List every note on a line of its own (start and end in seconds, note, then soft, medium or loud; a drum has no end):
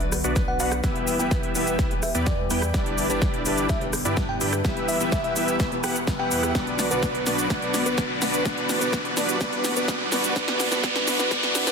0.00 0.22 B1 medium
0.00 0.13 B2 medium
0.00 0.82 D3 medium
0.00 0.82 F#3 medium
0.00 10.32 B3 medium
0.00 0.13 B3 medium
0.00 0.13 D4 medium
0.00 0.82 F#4 medium
0.00 0.14 F#4 medium
0.00 0.14 B4 medium
0.00 closed hi-hat soft
0.00 riser medium
0.12 cross-stick medium
0.12 open hi-hat loud
0.12 cabasa medium
0.24 0.58 B1 medium
0.24 0.36 B3 medium
0.24 0.36 D4 medium
0.24 0.36 F#4 medium
0.24 0.36 B4 medium
0.24 0.36 D5 medium
0.24 closed hi-hat medium
0.24 cabasa soft
0.35 0.80 B2 medium
0.35 0.81 B3 medium
0.35 0.81 D4 medium
0.35 0.81 F#4 medium
0.35 0.81 B4 medium
0.35 kick loud
0.35 snare soft
0.35 closed hi-hat medium
0.35 cabasa soft
0.48 0.58 F#5 medium
0.60 0.81 B1 medium
0.60 0.72 B3 medium
0.60 0.72 D4 medium
0.60 0.72 F#4 medium
0.60 0.72 B4 medium
0.60 0.72 F#5 loud
0.60 0.72 F#5 medium
0.60 open hi-hat loud
0.60 cabasa medium
0.72 cross-stick medium
0.72 closed hi-hat medium
0.72 cabasa soft
0.83 1.17 E1 loud
0.83 1.16 E3 medium
0.83 2.72 E3 medium
0.83 4.61 G3 medium
0.83 1.16 B3 medium
0.83 1.17 B3 loud
0.83 1.16 E4 medium
0.83 1.17 E4 medium
0.83 1.17 G4 medium
0.83 2.72 G4 medium
0.83 1.17 G4 medium
0.83 1.16 B4 medium
0.83 1.17 B4 medium
0.83 1.17 E5 loud
0.83 kick loud
0.83 snare medium
0.83 closed hi-hat medium
0.83 cabasa soft
0.96 closed hi-hat soft
1.07 open hi-hat loud
1.07 cabasa medium
1.19 1.53 E1 medium
1.19 1.32 E3 medium
1.19 1.32 B3 medium
1.19 1.52 B3 medium
1.19 1.32 E4 medium
1.19 1.52 E4 medium
1.19 1.52 G4 medium
1.19 1.33 G4 medium
1.19 1.52 B4 medium
1.19 1.33 B4 medium
1.19 1.52 E5 medium
1.19 1.32 G5 medium
1.19 closed hi-hat medium
1.19 cabasa soft
1.31 kick loud
1.31 snare medium
1.31 closed hi-hat medium
1.31 cabasa soft
1.43 closed hi-hat soft
1.54 1.77 E1 loud
1.54 1.88 E3 medium
1.54 1.88 B3 medium
1.54 1.76 B3 medium
1.54 1.88 E4 medium
1.54 1.76 E4 medium
1.54 1.76 G4 medium
1.54 1.88 G4 medium
1.54 1.76 B4 medium
1.54 1.88 B4 medium
1.54 1.76 E5 medium
1.54 open hi-hat loud
1.54 cabasa medium
1.67 closed hi-hat medium
1.67 cabasa soft
1.79 2.12 E1 medium
1.79 1.91 B3 medium
1.79 1.91 E4 medium
1.79 1.91 B4 medium
1.79 kick loud
1.79 snare medium
1.79 closed hi-hat medium
1.79 cabasa soft
1.90 2.04 E3 medium
1.90 2.04 B3 medium
1.90 2.04 E4 medium
1.90 2.04 G4 medium
1.90 2.04 B4 medium
1.90 closed hi-hat soft
2.03 2.15 E5 medium
2.03 cross-stick medium
2.03 open hi-hat loud
2.03 cabasa medium
2.15 2.48 E2 medium
2.15 2.27 B3 medium
2.15 2.27 E4 medium
2.15 2.27 G4 medium
2.15 2.27 B4 medium
2.15 2.27 D5 medium
2.15 closed hi-hat medium
2.15 cabasa soft
2.26 2.71 E3 medium
2.26 2.71 B3 medium
2.26 2.71 E4 medium
2.26 2.71 G4 medium
2.26 2.72 B4 medium
2.26 2.79 D5 medium
2.26 kick loud
2.26 snare medium
2.26 closed hi-hat medium
2.26 cabasa soft
2.50 2.72 E2 loud
2.50 2.62 B3 medium
2.50 2.62 E4 medium
2.50 2.62 G4 medium
2.50 2.62 B4 medium
2.50 2.62 G5 loud
2.50 open hi-hat loud
2.50 cabasa medium
2.62 cross-stick medium
2.62 closed hi-hat medium
2.62 cabasa soft
2.73 3.07 G1 loud
2.73 4.63 D3 medium
2.73 3.07 G3 medium
2.73 3.07 D4 medium
2.73 3.07 D4 loud
2.73 3.07 E4 medium
2.73 4.63 E4 medium
2.73 3.07 E4 medium
2.73 3.07 G4 medium
2.73 3.07 B4 medium
2.73 3.07 D5 loud
2.73 kick loud
2.73 snare medium
2.73 closed hi-hat medium
2.73 cabasa soft
2.86 closed hi-hat soft
2.98 open hi-hat loud
2.98 cabasa medium
3.09 3.43 G1 loud
3.09 3.23 G3 medium
3.09 3.23 D4 medium
3.09 3.43 D4 medium
3.09 3.23 E4 medium
3.09 3.43 E4 medium
3.09 3.43 G4 medium
3.09 3.23 G4 medium
3.09 3.22 B4 medium
3.09 3.43 B4 medium
3.09 3.23 B4 medium
3.09 3.43 D5 loud
3.09 closed hi-hat medium
3.09 cabasa soft
3.22 kick loud
3.22 snare medium
3.22 closed hi-hat medium
3.22 cabasa soft
3.34 closed hi-hat soft
3.45 3.67 G1 loud
3.45 3.78 G3 medium
3.45 3.78 D4 medium
3.45 3.67 D4 medium
3.45 3.78 E4 medium
3.45 3.67 E4 medium
3.45 3.67 G4 medium
3.45 3.79 G4 medium
3.45 3.67 B4 medium
3.45 3.79 B4 medium
3.45 3.67 D5 medium
3.45 open hi-hat loud
3.45 cabasa medium
3.57 closed hi-hat medium
3.57 cabasa soft
3.69 4.03 G1 medium
3.69 3.81 D4 medium
3.69 3.81 E4 medium
3.69 3.81 B4 medium
3.69 3.81 D5 medium
3.69 3.82 E5 medium
3.69 kick loud
3.69 snare medium
3.69 closed hi-hat medium
3.69 cabasa soft
3.81 3.94 G3 medium
3.81 3.94 D4 medium
3.81 3.94 E4 medium
3.81 3.94 G4 medium
3.81 3.95 B4 medium
3.81 closed hi-hat soft
3.93 cross-stick medium
3.93 open hi-hat loud
3.93 cabasa medium
4.05 4.38 G2 medium
4.05 4.17 D4 medium
4.05 4.17 E4 medium
4.05 4.17 G4 medium
4.05 4.17 B4 medium
4.05 4.17 D5 medium
4.05 closed hi-hat medium
4.05 cabasa soft
4.16 4.61 G3 medium
4.16 4.62 D4 medium
4.16 4.62 E4 medium
4.16 4.62 G4 medium
4.16 4.62 B4 medium
4.16 kick loud
4.16 snare medium
4.16 closed hi-hat medium
4.16 cabasa soft
4.29 4.38 G5 medium
4.41 4.62 G2 medium
4.41 4.53 D4 loud
4.41 4.53 E4 medium
4.41 4.53 G4 medium
4.41 4.53 B4 medium
4.41 4.53 G5 loud
4.41 open hi-hat loud
4.41 cabasa medium
4.53 cross-stick medium
4.53 closed hi-hat soft
4.53 cabasa soft
4.64 4.98 E1 loud
4.64 4.97 E3 medium
4.64 6.53 E3 medium
4.64 6.53 G3 medium
4.64 4.97 B3 medium
4.64 4.97 B3 loud
4.64 4.97 E4 medium
4.64 4.97 G4 medium
4.64 6.53 G4 medium
4.64 4.98 G4 medium
4.64 4.97 B4 medium
4.64 4.98 B4 medium
4.64 4.97 E5 loud
4.64 kick loud
4.64 snare medium
4.64 closed hi-hat medium
4.64 cabasa soft
4.77 closed hi-hat soft
4.88 5.01 E5 medium
4.88 open hi-hat loud
4.88 cabasa medium
4.99 5.34 E1 loud
4.99 5.13 E3 medium
4.99 5.33 B3 medium
4.99 5.13 B3 medium
4.99 5.13 E4 medium
4.99 5.33 E4 medium
4.99 5.33 G4 medium
4.99 5.13 G4 medium
4.99 5.33 B4 medium
4.99 5.14 B4 medium
4.99 5.33 E5 medium
4.99 closed hi-hat medium
4.99 cabasa soft
5.12 5.20 E5 medium
5.12 kick loud
5.12 snare medium
5.12 closed hi-hat medium
5.12 cabasa soft
5.24 5.32 E5 medium
5.24 closed hi-hat soft
5.35 5.58 E1 loud
5.35 5.69 E3 medium
5.35 5.69 B3 medium
5.35 5.57 B3 medium
5.35 5.69 E4 medium
5.35 5.57 E4 medium
5.35 5.57 G4 medium
5.35 5.69 G4 medium
5.35 5.57 B4 medium
5.35 5.69 B4 medium
5.35 5.57 E5 medium
5.35 open hi-hat loud
5.35 cabasa medium
5.48 closed hi-hat soft
5.48 cabasa soft
5.60 5.81 E1 loud
5.60 kick loud
5.60 snare medium
5.60 closed hi-hat medium
5.60 cabasa soft
5.71 5.84 E3 medium
5.71 5.85 B3 medium
5.71 5.85 E4 medium
5.71 5.85 G4 medium
5.71 5.85 B4 medium
5.71 closed hi-hat soft
5.84 6.17 E1 medium
5.84 5.96 B3 medium
5.84 5.96 E4 medium
5.84 5.96 G4 medium
5.84 5.96 B4 medium
5.84 5.96 F#5 loud
5.84 5.96 G5 medium
5.84 cross-stick medium
5.84 open hi-hat loud
5.84 cabasa medium
5.96 closed hi-hat soft
5.96 cabasa soft
6.07 6.52 E3 medium
6.07 6.52 B3 medium
6.07 6.52 E4 medium
6.07 6.52 G4 medium
6.07 6.52 B4 medium
6.07 kick loud
6.07 snare medium
6.07 closed hi-hat medium
6.07 cabasa soft
6.19 6.29 E1 medium
6.19 6.29 B3 medium
6.19 6.29 E4 medium
6.19 6.29 G4 medium
6.19 6.29 B4 medium
6.19 6.29 F#5 loud
6.19 6.55 G5 medium
6.31 6.53 E2 loud
6.31 6.52 B3 medium
6.31 6.52 E4 medium
6.31 6.52 G4 medium
6.31 6.52 B4 medium
6.31 6.52 F#5 medium
6.31 open hi-hat loud
6.31 cabasa medium
6.43 cross-stick medium
6.43 closed hi-hat soft
6.43 cabasa soft
6.54 6.88 B1 loud
6.54 6.88 B2 medium
6.54 8.44 D3 medium
6.54 8.44 F#3 medium
6.54 6.88 B3 medium
6.54 6.88 D4 medium
6.54 8.44 F#4 medium
6.54 6.88 F#4 medium
6.54 6.88 B4 medium
6.54 6.88 D5 loud
6.54 kick loud
6.54 snare medium
6.54 closed hi-hat medium
6.54 cabasa soft
6.67 closed hi-hat soft
6.79 snare medium
6.79 open hi-hat loud
6.79 cabasa medium
6.90 7.24 B1 loud
6.90 7.04 B2 medium
6.90 7.04 B3 medium
6.90 7.24 B3 medium
6.90 7.04 D4 medium
6.90 7.24 D4 medium
6.90 7.24 F#4 medium
6.90 7.04 F#4 medium
6.90 7.03 B4 medium
6.90 7.24 B4 medium
6.90 7.04 B4 medium
6.90 7.24 D5 medium
6.90 closed hi-hat soft
6.90 cabasa soft
7.03 kick loud
7.03 snare medium
7.03 closed hi-hat medium
7.03 cabasa soft
7.15 closed hi-hat soft
7.26 7.48 B1 loud
7.26 7.48 B2 medium
7.26 7.48 B3 medium
7.26 7.48 D4 medium
7.26 7.48 F#4 medium
7.26 7.49 F#4 medium
7.26 7.48 B4 medium
7.26 7.49 B4 medium
7.26 7.48 D5 medium
7.26 snare medium
7.26 open hi-hat loud
7.26 cabasa medium
7.38 closed hi-hat soft
7.38 cabasa soft
7.50 7.84 B1 loud
7.50 7.83 B2 medium
7.50 7.83 B3 medium
7.50 7.83 D4 medium
7.50 7.83 F#4 medium
7.50 7.83 B4 medium
7.50 kick loud
7.50 snare medium
7.50 closed hi-hat medium
7.50 cabasa soft
7.62 closed hi-hat soft
7.74 snare medium
7.74 open hi-hat loud
7.74 cabasa medium
7.85 8.19 B1 medium
7.85 7.99 B2 medium
7.85 7.99 B3 medium
7.85 8.19 B3 medium
7.85 7.99 D4 medium
7.85 8.19 D4 medium
7.85 8.19 F#4 medium
7.85 7.99 F#4 medium
7.85 7.98 B4 medium
7.85 8.19 B4 medium
7.85 7.99 B4 medium
7.85 8.19 D5 medium
7.85 closed hi-hat soft
7.85 cabasa soft
7.98 kick loud
7.98 snare medium
7.98 closed hi-hat medium
7.98 cabasa soft
8.21 8.43 B1 loud
8.21 8.43 B2 medium
8.21 8.43 B3 medium
8.21 8.44 D4 medium
8.21 8.43 D4 medium
8.21 8.43 F#4 medium
8.21 8.44 F#4 medium
8.21 8.43 B4 medium
8.21 8.44 B4 medium
8.21 8.43 D5 medium
8.21 snare medium
8.21 open hi-hat loud
8.21 cabasa medium
8.34 closed hi-hat medium
8.34 cabasa soft
8.45 8.79 E1 loud
8.45 8.78 B2 medium
8.45 10.34 E3 medium
8.45 11.72 G3 medium
8.45 8.78 B3 medium
8.45 8.78 D4 medium
8.45 8.78 F#4 medium
8.45 8.78 B4 medium
8.45 8.79 B4 medium
8.45 kick loud
8.45 snare medium
8.45 closed hi-hat medium
8.45 cabasa soft
8.58 closed hi-hat soft
8.69 snare medium
8.69 open hi-hat loud
8.69 cabasa medium
8.80 9.15 E1 medium
8.80 8.94 B2 medium
8.80 8.94 B3 medium
8.80 9.14 B3 medium
8.80 8.94 D4 medium
8.80 9.14 D4 medium
8.80 9.14 F#4 medium
8.80 8.94 F#4 medium
8.80 9.14 B4 medium
8.80 8.93 B4 medium
8.80 8.95 B4 medium
8.80 9.14 D5 medium
8.80 closed hi-hat medium
8.80 cabasa soft
8.93 kick loud
8.93 snare medium
8.93 closed hi-hat medium
8.93 cabasa soft
9.05 closed hi-hat soft
9.16 9.38 E1 loud
9.16 9.39 B2 medium
9.16 9.39 B3 medium
9.16 9.38 B3 medium
9.16 9.39 D4 medium
9.16 9.38 D4 medium
9.16 9.38 F#4 medium
9.16 9.39 F#4 medium
9.16 9.38 B4 medium
9.16 9.39 B4 medium
9.16 9.38 D5 medium
9.16 snare medium
9.16 open hi-hat loud
9.16 cabasa medium
9.29 closed hi-hat medium
9.29 cabasa soft
9.40 9.74 E1 loud
9.40 9.73 B2 medium
9.40 9.73 B3 medium
9.40 9.74 B3 medium
9.40 9.74 D4 medium
9.40 9.74 F#4 medium
9.40 9.74 B4 medium
9.40 kick loud
9.40 snare medium
9.40 closed hi-hat medium
9.40 cabasa soft
9.53 closed hi-hat soft
9.64 snare medium
9.64 open hi-hat loud
9.64 cabasa medium
9.76 10.10 E1 loud
9.76 9.89 B2 medium
9.76 9.89 B3 medium
9.76 10.09 B3 medium
9.76 9.89 D4 medium
9.76 10.09 D4 medium
9.76 10.09 F#4 medium
9.76 9.90 F#4 medium
9.76 10.09 B4 medium
9.76 9.89 B4 medium
9.76 9.90 B4 medium
9.76 10.09 D5 medium
9.76 closed hi-hat medium
9.76 cabasa soft
9.88 kick loud
9.88 snare medium
9.88 closed hi-hat medium
9.88 cabasa soft
10.12 10.34 G1 loud
10.12 10.34 B2 medium
10.12 10.34 B3 medium
10.12 10.33 B3 medium
10.12 10.34 D4 medium
10.12 10.33 D4 medium
10.12 10.33 F#4 medium
10.12 10.34 F#4 medium
10.12 10.33 B4 medium
10.12 10.34 B4 medium
10.12 10.33 D5 medium
10.12 snare medium
10.12 open hi-hat loud
10.12 cabasa medium
10.24 closed hi-hat medium
10.24 cabasa soft
10.35 10.69 G1 loud
10.35 10.69 B2 medium
10.35 11.72 D3 medium
10.35 10.69 B3 loud
10.35 10.69 B3 medium
10.35 11.72 B3 medium
10.35 10.69 D4 medium
10.35 11.72 E4 medium
10.35 10.69 F#4 medium
10.35 10.69 B4 medium
10.35 10.69 D5 loud
10.35 kick loud
10.35 snare loud
10.35 closed hi-hat medium
10.35 cabasa soft
10.48 snare medium
10.48 closed hi-hat soft
10.60 snare medium
10.60 open hi-hat loud
10.60 cabasa medium
10.71 10.81 G1 loud
10.71 10.81 B2 medium
10.71 10.82 B3 medium
10.71 10.82 D4 medium
10.71 10.82 F#4 medium
10.71 10.82 B4 medium
10.71 10.82 D5 medium
10.71 snare medium
10.71 closed hi-hat medium
10.71 cabasa soft
10.83 11.17 G1 loud
10.83 11.16 B2 medium
10.83 11.16 B3 medium
10.83 11.16 D4 medium
10.83 11.17 F#4 medium
10.83 11.17 B4 medium
10.83 kick loud
10.83 snare loud
10.83 closed hi-hat medium
10.83 cabasa soft
10.96 snare medium
10.96 closed hi-hat soft
11.07 snare medium
11.07 open hi-hat loud
11.07 cabasa medium
11.19 11.29 G1 loud
11.19 11.29 B2 medium
11.19 11.29 B3 medium
11.19 11.29 D4 medium
11.19 11.29 F#4 medium
11.19 11.29 B4 medium
11.19 11.30 B4 medium
11.19 11.29 D5 loud
11.19 snare medium
11.19 cabasa soft
11.30 11.65 G1 loud
11.30 11.64 B2 medium
11.30 11.64 B3 medium
11.30 11.64 B3 loud
11.30 11.64 D4 medium
11.30 11.64 F#4 medium
11.30 11.64 B4 medium
11.30 11.64 D5 loud
11.30 kick loud
11.30 snare loud
11.30 closed hi-hat medium
11.30 cabasa soft
11.43 snare medium
11.43 closed hi-hat soft
11.55 snare loud
11.55 open hi-hat loud
11.55 cabasa medium
11.66 11.72 G1 loud
11.66 11.72 B2 medium
11.66 11.72 B3 medium
11.66 11.72 D4 medium
11.66 11.72 F#4 medium
11.66 11.72 B4 medium
11.66 11.72 D5 medium
11.66 snare medium
11.66 closed hi-hat medium
11.66 cabasa soft